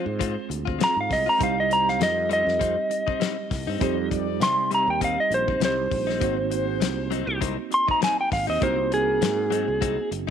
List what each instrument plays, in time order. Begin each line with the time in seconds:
Already playing: tine electric piano G#3 C4 F4 G#4, electric slide guitar C5
0.06 fretless electric bass G#2, muted clean electric guitar stroke
0.19 clean electric guitar G#3 C4 F4, kick, closed hi-hat
0.36 muted clean electric guitar stroke
0.49 fretless electric bass D2, muted clean electric guitar stroke, closed hi-hat
0.65 clean electric guitar C4 F4, kick
0.79 clean electric guitar G#3 C4 F4, tine electric piano G#3 C4 F4 G#4, snare, closed hi-hat
0.84 electric slide guitar A#5
0.96 fretless electric bass G#2
1.01 electric slide guitar F5
1.09 fretless electric bass C2, electric slide guitar D#5, muted clean electric guitar stroke, kick, snare, open hi-hat
1.26 clean electric guitar C4 F4, electric slide guitar A#5
1.38 fretless electric bass C2, tine electric piano G3 C4 D#4 G4, clean electric guitar G3 C4 D#4, horn section D#4 G4 C5, kick, closed hi-hat
1.43 electric slide guitar F5
1.57 electric slide guitar D#5, muted clean electric guitar stroke
1.70 horn section D#4 G4 C5, electric slide guitar A#5, muted clean electric guitar stroke, closed hi-hat
1.88 electric slide guitar F5, snare
2.00 fretless electric bass F2, electric slide guitar D#5, muted clean electric guitar stroke, snare, closed hi-hat
2.29 clean electric guitar G3 C4 D#4, electric slide guitar D#5, closed hi-hat
2.47 fretless electric bass F2, muted clean electric guitar stroke, snare
2.59 clean electric guitar G3 C4 D#4, kick, closed hi-hat
2.77 muted clean electric guitar stroke
2.90 muted clean electric guitar stroke, closed hi-hat
3.07 clean electric guitar C4 D#4, kick
3.20 clean electric guitar G3 C4 D#4, snare, closed hi-hat
3.50 fretless electric bass C2, muted clean electric guitar stroke, kick, snare, open hi-hat
3.67 fretless electric bass G2, clean electric guitar C4 D#4
3.79 fretless electric bass F2, tine electric piano G3 C4 D#4 G4, clean electric guitar G3 C4 D#4, horn section D#4 G4 C5, kick, closed hi-hat
3.98 muted clean electric guitar stroke
4.08 horn section D#4 G4 D5, muted clean electric guitar stroke, kick, closed hi-hat
4.40 fretless electric bass C3, electric slide guitar C6, muted clean electric guitar stroke, snare, closed hi-hat
4.71 clean electric guitar G3 C4 D#4, electric slide guitar A#5, closed hi-hat
4.87 fretless electric bass D#2, electric slide guitar G5, muted clean electric guitar stroke
5.01 clean electric guitar G3 C4 D#4, electric slide guitar F5, kick, closed hi-hat
5.18 electric slide guitar D#5, muted clean electric guitar stroke
5.31 fretless electric bass A#1, electric slide guitar C5, muted clean electric guitar stroke, closed hi-hat
5.48 clean electric guitar C4 D#4, kick
5.60 fretless electric bass C2, tine electric piano G3 C4 D#4 G4, clean electric guitar G3 C4 D#4, snare, closed hi-hat
5.65 electric slide guitar C5
5.91 fretless electric bass A#1, muted clean electric guitar stroke, kick, open hi-hat
6.07 clean electric guitar C4 D#4, snare
6.19 fretless electric bass G#1, clean electric guitar F#3 C4 D#4, tine electric piano A#3 C4 D#4 F#4, horn section F#4 G#4 C5, kick, closed hi-hat
6.38 muted clean electric guitar stroke
6.50 horn section F#4 G#4 C5, muted clean electric guitar stroke, closed hi-hat
6.80 fretless electric bass C2, muted clean electric guitar stroke, snare, closed hi-hat
7.11 clean electric guitar F#3 C4 D#4, closed hi-hat
7.27 fretless electric bass C2, muted clean electric guitar stroke
7.41 clean electric guitar F#3 C4 D#4, kick, closed hi-hat
7.58 muted clean electric guitar stroke
7.71 electric slide guitar C6, muted clean electric guitar stroke, closed hi-hat
7.87 clean electric guitar C4 D#4, electric slide guitar A#5, kick
8.01 clean electric guitar F#3 C4 D#4, electric slide guitar G#5, snare, closed hi-hat
8.18 electric slide guitar G5, muted clean electric guitar stroke
8.32 fretless electric bass G#1, electric slide guitar F5, muted clean electric guitar stroke, kick, snare, open hi-hat
8.47 fretless electric bass D#2, clean electric guitar C4 D#4, electric slide guitar D#5
8.60 fretless electric bass C2, clean electric guitar F#3 C4 D#4, tine electric piano A#3 C4 D#4 F#4, horn section F#4 G#4 A#4, electric slide guitar C5, kick, closed hi-hat
8.78 muted clean electric guitar stroke
8.91 horn section F#4 G#4 A#4, electric slide guitar G#4, muted clean electric guitar stroke, closed hi-hat
9.21 fretless electric bass G#2, muted clean electric guitar stroke, snare, closed hi-hat
9.51 clean electric guitar F#3 C4 D#4, closed hi-hat
9.68 fretless electric bass C2, muted clean electric guitar stroke
9.81 clean electric guitar F#3 C4 D#4, kick, closed hi-hat
9.98 muted clean electric guitar stroke
10.11 fretless electric bass F#1, muted clean electric guitar stroke, closed hi-hat